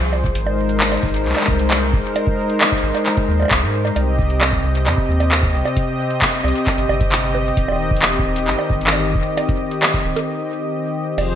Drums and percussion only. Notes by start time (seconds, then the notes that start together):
0.13 high bongo
0.24 kick
0.35 closed hi-hat
0.47 high bongo
0.69 closed hi-hat
0.80 clap, closed hi-hat
0.92 closed hi-hat, high bongo
0.97 closed hi-hat
1.03 kick, closed hi-hat
1.09 closed hi-hat
1.14 closed hi-hat
1.25 clap
1.29 clap
1.33 clap
1.37 clap, high bongo
1.41 clap
1.44 kick, clap
1.59 closed hi-hat
1.71 clap, closed hi-hat, high bongo
1.93 kick
2.16 closed hi-hat, high bongo
2.27 kick
2.50 closed hi-hat
2.61 clap, closed hi-hat, high bongo
2.72 kick
2.78 closed hi-hat
2.95 closed hi-hat, high bongo
3.06 clap, closed hi-hat
3.17 kick, closed hi-hat
3.40 high bongo
3.42 high bongo
3.45 high bongo
3.48 kick, clap, closed hi-hat, high bongo
3.85 high bongo
3.96 closed hi-hat, high bongo
4.19 kick
4.30 closed hi-hat
4.41 clap, closed hi-hat, high bongo
4.53 kick
4.75 closed hi-hat
4.86 clap, closed hi-hat, high bongo
4.98 kick
5.20 closed hi-hat, high bongo
5.32 clap, closed hi-hat
5.43 kick
5.65 high bongo
5.77 kick, closed hi-hat
6.10 closed hi-hat
6.22 kick, clap, closed hi-hat
6.33 closed hi-hat
6.41 closed hi-hat, high bongo
6.48 closed hi-hat
6.55 closed hi-hat
6.67 kick, clap, closed hi-hat
6.78 closed hi-hat
6.89 high bongo
7.01 kick, closed hi-hat
7.12 clap, closed hi-hat
7.35 high bongo
7.57 kick, closed hi-hat
7.68 high bongo
7.72 high bongo
7.76 high bongo
7.91 kick
7.96 closed hi-hat
8.02 clap, closed hi-hat
8.13 closed hi-hat
8.19 kick
8.36 closed hi-hat
8.47 clap
8.59 high bongo
8.70 kick
8.81 closed hi-hat
8.87 clap
8.92 closed hi-hat, high bongo
9.15 kick
9.37 closed hi-hat, high bongo
9.49 kick, closed hi-hat
9.71 closed hi-hat
9.83 clap, closed hi-hat, high bongo
9.94 kick, closed hi-hat
9.96 closed hi-hat
9.98 closed hi-hat
10.01 closed hi-hat
10.03 closed hi-hat
10.16 closed hi-hat, high bongo
11.18 closed hi-hat, crash, high bongo